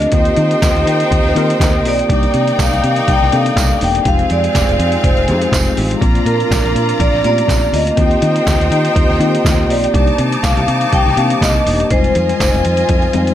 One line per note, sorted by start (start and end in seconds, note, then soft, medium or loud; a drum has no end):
0.00 0.11 F3 medium
0.00 0.10 A3 medium
0.00 0.13 A#3 medium
0.00 4.02 A#3 medium
0.00 0.14 C4 medium
0.00 0.12 D4 medium
0.00 0.15 D4 medium
0.00 0.14 F4 loud
0.00 0.11 G4 medium
0.00 0.15 A4 medium
0.00 1.92 D#5 loud
0.00 closed hi-hat soft
0.12 0.29 D#2 medium
0.12 2.08 D#3 medium
0.12 1.01 A#3 medium
0.12 2.07 C4 medium
0.12 1.01 C4 medium
0.12 2.05 D#4 medium
0.12 2.07 F4 medium
0.12 1.02 F4 medium
0.12 2.07 G4 medium
0.12 1.02 G4 medium
0.12 2.05 C5 medium
0.12 2.05 G5 medium
0.12 kick loud
0.12 closed hi-hat medium
0.25 closed hi-hat soft
0.36 0.54 D#3 medium
0.36 closed hi-hat medium
0.51 closed hi-hat soft
0.62 0.72 D#2 medium
0.62 kick loud
0.62 snare loud
0.62 clap medium
0.62 closed hi-hat medium
0.62 tambourine medium
0.75 0.83 D#2 medium
0.75 closed hi-hat soft
0.86 1.02 D#3 medium
0.86 closed hi-hat medium
1.00 closed hi-hat soft
1.11 1.21 D#2 medium
1.11 kick loud
1.11 closed hi-hat medium
1.24 1.32 D#2 medium
1.24 snare soft
1.35 1.52 D#3 loud
1.35 1.80 A#3 medium
1.35 1.80 C4 medium
1.35 1.80 F4 medium
1.35 1.80 A#4 medium
1.35 closed hi-hat medium
1.50 closed hi-hat medium
1.60 1.84 D#2 medium
1.60 kick loud
1.60 snare loud
1.60 clap medium
1.60 closed hi-hat medium
1.60 tambourine medium
1.84 2.01 B1 medium
1.84 2.07 A#3 medium
1.84 2.07 C4 medium
1.84 2.07 F4 medium
1.84 2.08 G4 medium
1.84 open hi-hat medium
1.88 2.62 D5 loud
1.99 closed hi-hat soft
2.08 2.26 C2 loud
2.08 4.04 C3 medium
2.08 4.04 D#3 medium
2.08 4.04 G3 medium
2.08 2.97 A#3 medium
2.08 2.97 D4 medium
2.08 4.01 D#4 medium
2.08 2.98 D#4 medium
2.08 2.98 G4 medium
2.08 4.01 D5 medium
2.08 4.04 D5 medium
2.08 4.01 G5 loud
2.08 kick loud
2.08 closed hi-hat medium
2.23 closed hi-hat soft
2.34 2.51 C3 medium
2.34 closed hi-hat medium
2.48 closed hi-hat soft
2.59 2.68 C2 medium
2.59 3.10 F5 loud
2.59 kick loud
2.59 snare loud
2.59 clap medium
2.59 closed hi-hat medium
2.59 tambourine medium
2.72 2.79 C2 medium
2.72 closed hi-hat soft
2.84 3.00 C3 loud
2.84 closed hi-hat medium
2.96 closed hi-hat soft
3.08 3.17 C2 loud
3.08 3.34 G5 loud
3.08 kick loud
3.08 closed hi-hat medium
3.22 3.29 C2 medium
3.22 snare soft
3.32 3.49 C3 medium
3.32 3.76 A#3 medium
3.32 3.76 D4 medium
3.32 3.76 D#4 medium
3.32 3.77 A4 medium
3.32 3.84 F5 medium
3.32 closed hi-hat medium
3.46 closed hi-hat medium
3.56 3.73 C2 medium
3.56 kick loud
3.56 snare loud
3.56 clap medium
3.56 closed hi-hat medium
3.56 tambourine loud
3.81 3.98 E1 loud
3.81 4.03 A#3 medium
3.81 4.03 D4 soft
3.81 4.03 D#4 medium
3.81 4.04 G4 medium
3.81 4.08 G5 loud
3.81 open hi-hat medium
3.95 closed hi-hat medium
4.04 4.22 F1 loud
4.04 6.00 F3 medium
4.04 4.93 G#3 medium
4.04 6.00 G#3 medium
4.04 5.97 C4 medium
4.04 4.93 C4 medium
4.04 6.00 C4 medium
4.04 4.94 D#4 medium
4.04 6.00 D#4 medium
4.04 6.00 F4 medium
4.04 4.94 G4 medium
4.04 5.97 G#4 medium
4.04 5.97 F5 medium
4.04 kick loud
4.04 closed hi-hat medium
4.08 4.30 F5 loud
4.19 closed hi-hat soft
4.30 4.47 F2 medium
4.30 4.94 D5 loud
4.30 closed hi-hat medium
4.44 closed hi-hat soft
4.55 4.64 F1 medium
4.55 kick medium
4.55 snare loud
4.55 clap medium
4.55 closed hi-hat medium
4.55 tambourine medium
4.69 4.76 F1 medium
4.69 closed hi-hat soft
4.79 4.96 F2 medium
4.79 closed hi-hat medium
4.92 closed hi-hat soft
4.98 5.04 D5 medium
5.04 5.13 F1 loud
5.04 5.74 C5 medium
5.04 kick loud
5.04 closed hi-hat medium
5.17 5.30 F1 medium
5.17 closed hi-hat soft
5.28 5.45 F2 loud
5.28 5.72 G#3 medium
5.28 5.72 C4 medium
5.28 5.73 D#4 medium
5.28 5.73 G4 medium
5.28 closed hi-hat medium
5.42 closed hi-hat medium
5.52 5.69 F1 medium
5.52 kick loud
5.52 snare loud
5.52 clap medium
5.52 closed hi-hat medium
5.52 tambourine medium
5.65 closed hi-hat soft
5.77 5.94 A1 medium
5.77 5.99 G#3 medium
5.77 5.99 C4 medium
5.77 5.99 D#4 medium
5.77 5.99 G4 medium
5.77 open hi-hat medium
5.91 closed hi-hat soft
5.99 6.18 A#1 medium
5.99 11.87 A#2 medium
5.99 7.96 F3 medium
5.99 6.89 A#3 medium
5.99 6.90 C4 medium
5.99 6.90 D4 medium
5.99 7.96 D4 medium
5.99 7.92 F4 medium
5.99 6.90 F4 medium
5.99 7.92 D5 medium
5.99 7.93 A#5 medium
5.99 kick loud
5.99 closed hi-hat medium
6.15 closed hi-hat soft
6.25 6.42 A#2 medium
6.25 6.96 A#4 medium
6.25 closed hi-hat medium
6.40 closed hi-hat soft
6.51 6.60 A#1 medium
6.51 kick loud
6.51 snare loud
6.51 clap medium
6.51 closed hi-hat medium
6.51 tambourine medium
6.64 6.72 A#1 medium
6.64 closed hi-hat soft
6.75 6.92 A#2 medium
6.75 closed hi-hat medium
6.89 closed hi-hat soft
7.00 7.09 A#1 loud
7.00 7.24 D5 loud
7.00 kick loud
7.00 closed hi-hat medium
7.13 7.20 A#1 medium
7.13 snare soft
7.24 7.41 A#2 medium
7.24 7.68 A3 medium
7.24 7.68 C4 medium
7.24 7.31 C#4 soft
7.24 7.69 G4 medium
7.24 7.75 D5 loud
7.24 closed hi-hat medium
7.31 7.71 D4 medium
7.38 closed hi-hat soft
7.48 7.65 A#1 medium
7.48 kick loud
7.48 snare loud
7.48 clap medium
7.48 closed hi-hat medium
7.48 tambourine medium
7.72 7.90 D2 medium
7.72 7.95 A3 medium
7.72 7.95 C4 medium
7.72 7.95 D4 soft
7.72 7.95 F4 medium
7.72 9.76 D#5 loud
7.72 open hi-hat medium
7.87 closed hi-hat soft
7.96 8.15 D#2 medium
7.96 9.92 D#3 medium
7.96 8.85 A#3 medium
7.96 8.85 C4 medium
7.96 9.92 C4 medium
7.96 9.90 D#4 medium
7.96 8.86 F4 medium
7.96 9.92 F4 medium
7.96 8.04 F#4 medium
7.96 9.92 G4 medium
7.96 9.90 C5 medium
7.96 9.90 G5 medium
7.96 kick loud
7.96 closed hi-hat medium
8.03 8.89 G4 medium
8.11 closed hi-hat soft
8.22 8.39 D#3 medium
8.22 closed hi-hat medium
8.36 closed hi-hat soft
8.47 8.56 D#2 medium
8.47 kick loud
8.47 snare loud
8.47 clap medium
8.47 closed hi-hat medium
8.47 tambourine medium
8.60 8.67 D#2 medium
8.60 closed hi-hat soft
8.71 8.87 D#3 medium
8.71 closed hi-hat medium
8.85 closed hi-hat soft
8.96 9.05 D#2 medium
8.96 kick loud
8.96 closed hi-hat medium
9.09 9.17 D#2 medium
9.09 snare soft
9.19 9.37 D#3 loud
9.19 9.64 A#3 medium
9.19 9.64 C4 medium
9.19 9.64 F4 medium
9.19 9.64 G4 medium
9.19 closed hi-hat medium
9.35 closed hi-hat medium
9.45 9.69 D#2 medium
9.45 kick loud
9.45 snare loud
9.45 clap medium
9.45 closed hi-hat medium
9.45 tambourine medium
9.68 9.86 B1 medium
9.68 9.91 A#3 medium
9.68 9.91 C4 medium
9.68 9.91 F4 medium
9.68 9.92 G4 medium
9.68 10.16 D5 medium
9.68 open hi-hat medium
9.84 closed hi-hat medium
9.94 10.11 C2 loud
9.94 11.89 C3 medium
9.94 13.34 D#3 medium
9.94 11.88 G3 medium
9.94 10.82 A#3 medium
9.94 11.89 C4 medium
9.94 10.82 D4 medium
9.94 10.82 D#4 medium
9.94 11.87 D#4 medium
9.94 10.83 G4 medium
9.94 11.87 A5 medium
9.94 11.87 D6 medium
9.94 kick loud
9.94 closed hi-hat medium
10.07 closed hi-hat soft
10.18 10.35 C3 medium
10.18 closed hi-hat medium
10.32 closed hi-hat soft
10.43 10.53 C2 medium
10.43 10.94 F5 loud
10.43 kick loud
10.43 snare loud
10.43 clap medium
10.43 closed hi-hat medium
10.43 tambourine medium
10.57 10.64 C2 medium
10.57 closed hi-hat soft
10.68 10.84 C3 medium
10.68 closed hi-hat medium
10.81 closed hi-hat soft
10.93 11.02 C2 medium
10.93 11.18 G5 loud
10.93 kick loud
10.93 closed hi-hat medium
11.06 11.14 C2 medium
11.06 snare soft
11.17 11.33 C3 medium
11.17 11.61 A#3 medium
11.17 11.61 D4 medium
11.17 11.61 D#4 medium
11.17 11.61 G4 medium
11.17 11.43 F5 medium
11.17 closed hi-hat medium
11.30 closed hi-hat medium
11.41 11.58 C2 medium
11.41 11.92 D#5 medium
11.41 kick loud
11.41 snare loud
11.41 clap medium
11.41 closed hi-hat medium
11.41 tambourine medium
11.66 11.83 E1 medium
11.66 11.88 A#3 medium
11.66 11.88 D4 medium
11.66 11.88 D#4 soft
11.66 11.88 G4 medium
11.66 open hi-hat medium
11.80 closed hi-hat soft
11.91 12.07 F1 medium
11.91 13.34 F3 medium
11.91 12.80 G3 medium
11.91 12.79 G#3 medium
11.91 13.34 C4 medium
11.91 12.79 C4 medium
11.91 12.80 D#4 medium
11.91 13.34 F4 medium
11.91 13.34 C5 medium
11.91 13.34 D#5 medium
11.91 13.34 G#5 medium
11.91 kick loud
11.91 closed hi-hat medium
12.04 closed hi-hat soft
12.15 12.32 F2 medium
12.15 closed hi-hat medium
12.29 closed hi-hat soft
12.40 12.49 F1 medium
12.40 kick loud
12.40 snare loud
12.40 clap medium
12.40 closed hi-hat medium
12.40 tambourine medium
12.54 12.61 F1 medium
12.54 closed hi-hat soft
12.65 12.82 F2 medium
12.65 closed hi-hat medium
12.77 closed hi-hat soft
12.89 13.06 F2 medium
12.89 kick loud
12.89 closed hi-hat medium
13.02 closed hi-hat soft
13.13 13.31 F2 medium
13.13 13.34 G3 medium
13.13 13.34 G#3 medium
13.13 13.34 C4 medium
13.13 13.34 D#4 medium
13.13 closed hi-hat medium
13.27 closed hi-hat soft